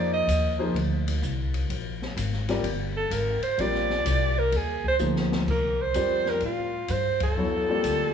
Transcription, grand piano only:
0.00 0.25 F3 medium
0.00 0.25 A#3 medium
0.00 0.25 D#4 medium
0.00 0.25 G#4 medium
0.00 0.25 C5 medium
0.59 0.74 F3 medium
0.59 0.74 A#3 medium
0.59 0.74 D#4 medium
0.59 0.74 G#4 medium
0.59 0.74 C5 medium
2.49 2.63 G3 medium
2.49 2.63 C4 medium
2.49 2.63 F4 medium
2.49 2.64 A#4 medium
2.49 2.63 D5 medium
3.59 4.32 G3 medium
3.59 4.32 C4 medium
3.59 4.32 F4 medium
3.59 4.32 A#4 medium
3.59 4.32 D5 medium
4.99 5.47 F3 medium
4.99 5.47 A#3 medium
4.99 5.48 D#4 medium
4.99 5.48 G#4 medium
4.99 5.48 C5 medium
5.95 6.68 G3 medium
5.95 6.68 C4 medium
5.95 6.68 F4 medium
5.95 6.68 A#4 soft
5.95 6.68 D5 medium
7.37 7.66 F#3 medium
7.37 7.66 B3 medium
7.37 7.66 E4 medium
7.37 7.66 A4 medium
7.37 7.66 C#5 medium
7.69 8.10 G3 medium
7.69 8.10 A#3 medium
7.69 8.10 C4 medium
7.69 8.10 F4 medium
7.69 8.10 D5 medium

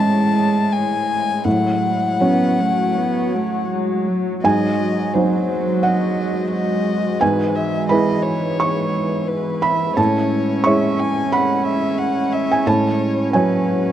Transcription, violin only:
0.00 0.74 A5 medium
0.73 1.46 G#5 medium
1.45 3.70 F#5 medium
4.44 5.15 D#5 medium
5.14 5.84 C5 medium
5.83 6.50 D#5 medium
6.51 7.23 D#5 medium
7.21 7.57 B4 medium
7.55 7.89 E5 medium
7.89 8.24 D#5 medium
8.23 9.29 C#5 medium
9.28 9.64 B4 medium
9.62 9.96 E5 medium
9.97 10.66 C#5 medium
10.64 11.01 E5 medium
10.99 11.34 G#5 medium
11.32 11.66 F#5 medium
11.67 12.00 E5 medium
11.98 12.35 F#5 medium
12.33 12.68 E5 medium
12.66 13.34 C#5 medium
13.34 13.92 B4 medium

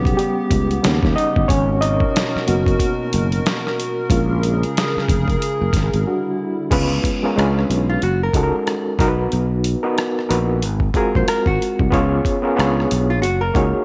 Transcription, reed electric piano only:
0.00 0.18 G3 medium
0.00 0.83 B3 medium
0.00 0.80 C#4 medium
0.00 0.22 B4 loud
0.17 0.81 G3 medium
0.17 1.19 G4 medium
0.82 1.29 G3 medium
0.82 1.29 B3 medium
0.82 1.29 C#4 medium
1.16 1.47 D#4 medium
1.16 1.50 D#5 loud
1.48 1.80 C#4 medium
1.48 1.82 C#5 loud
1.81 6.02 D#4 medium
1.81 6.01 D#5 medium
2.47 4.06 A#3 medium
2.47 4.06 B3 medium
2.47 4.06 F#4 medium
4.09 4.55 G#3 medium
4.09 4.56 C#4 soft
4.09 4.56 F4 medium
6.07 6.52 G3 medium
6.07 6.52 D4 soft
6.07 6.52 F#4 medium
6.71 7.11 G#3 medium
6.71 7.12 B3 medium
6.71 7.12 C#4 medium
6.71 7.12 F4 medium
6.71 7.12 B4 loud
7.23 7.35 G#3 medium
7.23 7.36 B3 medium
7.23 7.36 C#4 medium
7.23 7.37 F4 medium
7.23 7.37 A#4 medium
7.36 7.91 G#3 medium
7.36 7.91 C#4 medium
7.36 7.91 D4 medium
7.36 7.92 F4 medium
7.36 7.92 B4 medium
8.35 8.99 G#3 medium
8.35 8.99 C#4 medium
8.35 8.99 D#4 medium
8.35 8.99 F#4 medium
8.35 8.43 A4 medium
8.43 8.98 A#4 medium
8.99 9.65 B3 medium
8.99 9.65 D#4 medium
8.99 9.65 F#4 medium
8.99 9.01 A#4 medium
8.99 9.08 A#4 medium
9.08 9.69 B4 loud
9.83 10.22 B3 medium
9.83 10.22 D#4 medium
9.83 10.22 F#4 medium
9.83 10.21 A#4 medium
9.83 10.23 B4 medium
10.29 10.62 B3 medium
10.29 10.62 D#4 medium
10.29 10.62 F#4 medium
10.29 10.62 A#4 medium
10.29 10.63 B4 medium
10.94 11.76 G#3 medium
10.94 11.76 C4 medium
10.94 11.76 F4 medium
10.94 11.76 F#4 medium
10.94 11.77 A#4 loud
11.91 12.32 B3 loud
11.91 12.33 C#4 medium
11.91 12.33 F4 loud
11.91 12.33 G#4 medium
11.91 12.34 C#5 loud
12.42 12.55 B3 medium
12.42 12.57 C#4 medium
12.42 12.56 F4 medium
12.42 12.56 G#4 medium
12.42 12.58 A#4 medium
12.56 13.12 B3 medium
12.56 13.12 D4 medium
12.56 13.12 F4 medium
12.56 13.12 G#4 medium
12.56 13.13 C#5 loud
13.54 13.85 A#3 medium
13.54 13.85 D#4 medium
13.54 13.85 F#4 medium
13.54 13.85 G#4 medium
13.54 13.85 C#5 medium

